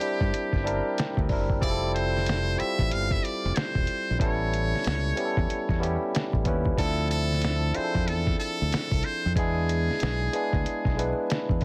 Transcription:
Already playing: E4 G4 A#4
0.00 G3 C4 D4 E4 G4, closed hi-hat
0.21 G2, kick
0.34 muted fingered electric bass stroke, closed hi-hat
0.53 G1, kick, snare
0.64 G3 C4 D4 E4 A#4 A5, closed hi-hat
0.76 A#5
0.98 G5, finger snap, snare, closed hi-hat
1.17 D2, kick
1.29 F#1 G3 C4 D4 E4 A#4, kick, open hi-hat
1.41 E5
1.50 kick
1.61 F1 G3 C4 E4 F4 G#4 D5, kick, closed hi-hat
1.71 A4
1.95 C5, closed hi-hat
2.17 snare
2.26 finger snap, snare, closed hi-hat
2.57 G3 C4 E4 F4 G4 E5, muted fingered electric bass stroke, closed hi-hat
2.79 A1, kick
2.91 G1 F5, closed hi-hat
3.11 E5, kick, snare
3.24 D5, closed hi-hat
3.45 F1
3.56 C5, finger snap, snare, closed hi-hat
3.75 E1, kick
3.87 closed hi-hat
4.11 A#1
4.19 A1 G3 B3 C#4 E4 A4 C#5, kick, closed hi-hat
4.54 closed hi-hat
4.76 snare
4.84 C#2, finger snap, snare, closed hi-hat
5.15 G3 B3 C#4 E4 G4, closed hi-hat
5.25 A4
5.37 E2, kick
5.50 muted fingered electric bass stroke, closed hi-hat
5.69 E2, kick, snare
5.80 G3 B3 C#4 E4 G4, closed hi-hat
6.15 finger snap, snare, closed hi-hat
6.33 A1, kick
6.44 D#2 G3 B3 C#4 E4 B4, kick, closed hi-hat
6.66 kick
6.76 D2 F3 C4 D4 E4 A4, kick, closed hi-hat
7.11 A4, closed hi-hat
7.32 snare
7.42 finger snap, snare, closed hi-hat
7.74 C4 D4 E4 F4 G#4 C5, muted fingered electric bass stroke, closed hi-hat
7.84 A4
7.95 F2, kick
8.08 E2 A4, closed hi-hat
8.27 kick, snare
8.40 A4, closed hi-hat
8.62 D2
8.72 finger snap, muted fingered electric bass stroke, snare, closed hi-hat
8.91 C2, kick
9.03 C5, closed hi-hat
9.26 F2
9.36 E2 G#3 B3 D4 E4 G#4, kick, closed hi-hat
9.69 closed hi-hat
9.91 snare
10.00 B1, finger snap, snare, closed hi-hat
10.33 G#3 B3 D4 E4 G#4, closed hi-hat
10.53 D2, kick
10.66 muted fingered electric bass stroke, closed hi-hat
10.85 B1, kick, snare
10.97 G#3 B3 D4 E4 B4, closed hi-hat
11.30 finger snap, snare, closed hi-hat
11.49 E2, kick
11.61 G#3, open hi-hat

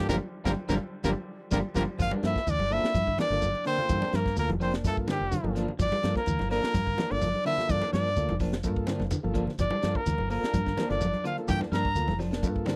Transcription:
0.08 G1 D3 F3 G3 A#3 D4 F4 G4 A#4, kick, snare, high conga, shekere
0.44 G1 D3 F3 G3 A#3 D4 F4 G4 A#4, kick, snare, high conga, shekere
0.69 G1 D3 F3 G3 A#3 D4 F4 G4 A#4, kick, snare, high conga, shekere
1.04 G1 D3 F3 G3 A#3 D4 F4 G4 A#4, kick, snare, high conga, shekere
1.51 G1 D3 F3 G3 A#3 D4 F4 G4 A#4, kick, snare, high conga, shekere
1.75 G1 D3 F3 G3 A#3 D4 F4 G4 A#4, kick, snare, high conga, shekere
1.99 G1 F3 A#3 D4 F4 F5, kick, closed hi-hat, high conga, low conga, shekere
2.11 G3 A#3 D4, high conga
2.23 G2 F3 A#3 E4 F4 A4 E5, muted clean electric guitar stroke, snare, closed hi-hat, shekere
2.36 kick, snare
2.47 D2 E3 D4 D5, closed hi-hat, high conga, shekere
2.59 G1, high conga
2.70 F3 A#3 D4 E4 F4 A4 E5, open hi-hat, shekere
2.83 A#3 D4, snare, closed hi-hat
2.94 G2 F3, kick, closed hi-hat, high conga, shekere
3.07 D3, kick
3.18 E3 F3 A#3 D4 D5, snare, closed hi-hat, high conga, shekere
3.30 G1 D3 A#3 F4 A4, snare, closed hi-hat
3.42 muted clean electric guitar stroke, closed hi-hat, high conga, low conga, shekere
3.55 closed hi-hat
3.64 D3 A#3 C4 D4 C5, muted clean electric guitar stroke, closed hi-hat, shekere
3.78 A#3 F4 A4, closed hi-hat, low conga
3.89 G2 E3, kick, closed hi-hat, high conga, low conga, shekere
4.00 A#3 D4, snare, high conga
4.12 G2 F3 A#3 A#4, snare, closed hi-hat, shekere
4.26 kick, snare
4.36 D2 A#3 F4 A4 A#4, closed hi-hat, high conga, shekere
4.49 F1 E3, closed hi-hat, high conga
4.60 F3 A#3 C4 D4 C5, open hi-hat, shekere
4.73 A#3 D4, snare, closed hi-hat
4.84 G2 A3 A#3 F4 A4, kick, closed hi-hat, high conga, shekere
4.97 kick
5.07 D3 F3 G3 A#3 D4 G4, snare, closed hi-hat, high conga, shekere
5.21 F1
5.31 D3, closed hi-hat, high conga, low conga, shekere
5.44 G1 F3 A#3 F4 A4, high conga
5.55 F3 A#3 D4, snare, closed hi-hat, shekere
5.68 low conga
5.79 G1 F3 D4 D5, kick, closed hi-hat, high conga, low conga, shekere
5.92 G3, snare, high conga
6.03 G2 F3 A#3 D4 F4 A4, snare, closed hi-hat, shekere
6.16 A#3 A#4, kick, snare
6.26 D2 E3, closed hi-hat, high conga, shekere
6.39 G1, snare, high conga
6.49 F3 A#3 D4 F4 A4 A#4, snare, open hi-hat, shekere
6.62 A#3 D4, snare, closed hi-hat
6.74 G2 F3, kick, closed hi-hat, shekere
6.86 D3, kick
6.97 E3 F3 A#3 D4, snare, closed hi-hat, high conga, shekere
7.11 G1 D3 A#3 D4 F4 A4 D5, closed hi-hat
7.21 F3, closed hi-hat, high conga, low conga, shekere
7.34 closed hi-hat, high conga
7.45 D3 F3 A#3 D4 E4 E5, closed hi-hat, shekere
7.58 A#3 F4 A4, snare, closed hi-hat, low conga
7.68 G2 E3 D4 D5, kick, snare, closed hi-hat, high conga, low conga, shekere
7.82 A#3 D4, snare, high conga
7.93 G2 F3 A#3 D4 D5, snare, closed hi-hat, shekere
8.16 D2 A#3 F4 A4, closed hi-hat, high conga, shekere
8.29 F1 E3, closed hi-hat, high conga
8.40 F3 A#3 D4, kick, open hi-hat, shekere
8.52 snare, closed hi-hat
8.63 G2 A#3 F4 A4, kick, closed hi-hat, high conga, shekere
8.76 kick
8.87 D3 F3 A#3 D4, snare, closed hi-hat, high conga, shekere
9.00 F1, snare, high conga
9.11 D3, closed hi-hat, high conga, shekere
9.23 G1 F3 A#3 F4 A4
9.34 F3 A#3 D4, kick, closed hi-hat, shekere
9.47 snare, low conga
9.59 G1 F3 D4 D5, kick, snare, closed hi-hat, high conga, low conga, shekere
9.70 G3 D4, high conga
9.82 G2 F3 A#3 D4 F4 A4, snare, closed hi-hat, shekere
9.95 A#3 A#4, kick
10.06 D2 E3, snare, closed hi-hat, high conga, shekere
10.18 G1, high conga
10.30 F3 A#3 F4 A4 A#4, open hi-hat, shekere
10.42 A#3 D4, muted fingered electric bass stroke, snare, closed hi-hat
10.54 G2 F3, kick, closed hi-hat, high conga, shekere
10.66 D3, kick, snare
10.77 E3 F3 A#3 D4, snare, closed hi-hat, high conga, shekere
10.88 G1 D3 A#3 D4 F4 A4 D5, snare, closed hi-hat
11.01 F3, closed hi-hat, high conga, low conga, shekere
11.14 closed hi-hat, high conga
11.24 D3 F3 A#3 D4 F4 F5, closed hi-hat, shekere
11.38 A#3 F4 A4, closed hi-hat
11.48 G2 E3 G4 G5, kick, closed hi-hat, high conga, low conga, shekere
11.60 A#3 D4, snare, high conga
11.72 G2 F3 A#3 D4 A#4 A#5, snare, closed hi-hat, shekere
11.85 kick
11.95 D2 A#3 F4 A4, closed hi-hat, high conga, shekere
12.08 F1 E3, snare, closed hi-hat, high conga
12.19 F3 D4, snare, open hi-hat, high conga, shekere
12.31 A#3 D4, snare, closed hi-hat
12.43 G2 A#3 F4 A4, kick, closed hi-hat, high conga, shekere
12.56 kick
12.65 D3 F3 A#3 D4, snare, closed hi-hat, high conga, shekere

